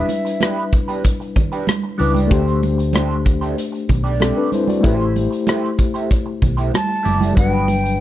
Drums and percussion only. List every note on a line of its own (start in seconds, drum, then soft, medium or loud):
0.09 closed hi-hat medium
0.09 muted conga soft
0.26 closed hi-hat soft
0.41 cross-stick medium
0.41 closed hi-hat medium
0.41 high conga medium
0.73 kick medium
0.73 closed hi-hat medium
0.89 closed hi-hat soft
1.04 kick medium
1.04 closed hi-hat medium
1.22 closed hi-hat soft
1.36 kick medium
1.36 closed hi-hat medium
1.36 low conga medium
1.52 closed hi-hat soft
1.67 cross-stick loud
1.67 closed hi-hat medium
1.67 high conga medium
1.99 closed hi-hat medium
2.15 closed hi-hat soft
2.15 high conga medium
2.31 kick loud
2.31 closed hi-hat medium
2.31 muted conga soft
2.48 closed hi-hat soft
2.63 closed hi-hat medium
2.63 muted conga soft
2.79 closed hi-hat soft
2.93 cross-stick medium
2.93 closed hi-hat medium
2.93 high conga medium
3.26 kick medium
3.26 closed hi-hat medium
3.43 closed hi-hat soft
3.58 closed hi-hat medium
3.75 closed hi-hat soft
3.89 kick medium
3.89 closed hi-hat medium
3.89 muted conga soft
3.89 low conga medium
4.06 closed hi-hat soft
4.20 cross-stick loud
4.20 closed hi-hat medium
4.20 high conga medium
4.52 closed hi-hat medium
4.52 high conga soft
4.68 closed hi-hat soft
4.68 high conga medium
4.84 kick loud
4.84 closed hi-hat medium
4.84 muted conga soft
5.16 closed hi-hat medium
5.16 muted conga soft
5.32 closed hi-hat soft
5.47 cross-stick medium
5.47 closed hi-hat medium
5.47 high conga medium
5.65 cross-stick soft
5.79 kick medium
5.79 closed hi-hat medium
5.95 closed hi-hat soft
6.11 kick medium
6.11 closed hi-hat medium
6.42 kick medium
6.42 closed hi-hat medium
6.42 low conga medium
6.58 closed hi-hat soft
6.74 cross-stick loud
6.74 closed hi-hat medium
6.74 high conga medium
7.05 closed hi-hat medium
7.05 high conga soft
7.21 closed hi-hat soft
7.21 high conga medium
7.37 kick loud
7.37 closed hi-hat medium
7.37 muted conga soft
7.68 closed hi-hat medium
7.68 muted conga soft
7.85 closed hi-hat soft